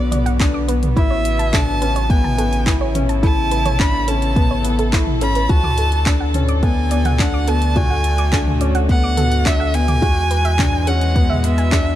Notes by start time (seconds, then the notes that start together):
Already playing: B1 D3 B3 F#4 B4 D5
0.12 B3 D5, closed hi-hat, mid tom
0.26 F#5, closed hi-hat
0.40 D4, kick, clap, closed hi-hat
0.54 D6
0.68 B3 B4, closed hi-hat
0.83 closed hi-hat, mid tom
0.96 A1 C#3 E4 B4 E5, kick, closed hi-hat
1.11 C#5
1.25 closed hi-hat
1.39 A5, closed hi-hat
1.53 D4 E4 A4 A5, kick, clap, closed hi-hat, mid tom
1.81 C#4 B4, closed hi-hat
1.96 C#5, closed hi-hat
2.10 B3 G#5, kick, closed hi-hat
2.24 A5, mid tom
2.38 B3 A4, closed hi-hat
2.53 closed hi-hat
2.66 E4 B4, kick, clap, closed hi-hat
2.81 C#5
2.95 C#4, closed hi-hat, mid tom
3.00 A4
3.09 A5, closed hi-hat
3.23 E4 A4 A5, kick, closed hi-hat
3.51 B4, closed hi-hat
3.66 C#5, closed hi-hat, mid tom
3.80 D4 B5, kick, clap, closed hi-hat
3.94 A5
4.08 C#4 A4 A5, closed hi-hat
4.22 closed hi-hat
4.36 B3 B4, kick, closed hi-hat, mid tom
4.51 C#5
4.64 B3, closed hi-hat
4.79 A4, closed hi-hat
4.93 E4 C#6, kick, clap, closed hi-hat
5.07 mid tom
5.21 C#4 A4 B5, closed hi-hat
5.35 B4, closed hi-hat
5.49 D2 D3 F#4 A5, kick, closed hi-hat
5.63 D6, mid tom
5.78 A4, closed hi-hat
5.92 closed hi-hat
6.06 D4 D5, kick, clap, closed hi-hat
6.18 F#4 F#5
6.33 A3 C#4, closed hi-hat, mid tom
6.49 D6, closed hi-hat
6.63 B3 A4 G#5, kick, closed hi-hat
6.91 B3 D5, closed hi-hat
7.05 F#5, closed hi-hat, mid tom
7.19 D4 F#5, kick, clap, closed hi-hat
7.34 D6
7.48 B3 A4 A5, closed hi-hat
7.62 closed hi-hat
7.76 F#4 D5 G#5, kick, closed hi-hat, mid tom
7.90 F#5
8.04 closed hi-hat
8.18 D6, closed hi-hat
8.32 D4 A4, kick, clap, closed hi-hat
8.47 mid tom
8.61 C#4 D5, closed hi-hat
8.75 F#5, closed hi-hat
8.89 B3 F#5, kick, closed hi-hat
9.04 D6
9.17 B3 A4, closed hi-hat, mid tom
9.32 closed hi-hat
9.45 D4 D5 E5, kick, clap, closed hi-hat
9.60 F#5
9.74 B3 G#5, closed hi-hat
9.88 D6, closed hi-hat, mid tom
10.02 E2 E3 F#4 G#4, kick, closed hi-hat
10.11 G#3
10.31 B4, closed hi-hat
10.45 E5, closed hi-hat
10.59 D4, kick, clap, closed hi-hat, mid tom
10.73 G#5
10.87 C#4 G#4 F#5, closed hi-hat
11.01 B4, closed hi-hat
11.15 B3 B4, kick, closed hi-hat
11.30 E5, mid tom
11.44 B3 E5, closed hi-hat
11.58 G#5, closed hi-hat
11.72 D4 G#4, kick, clap, closed hi-hat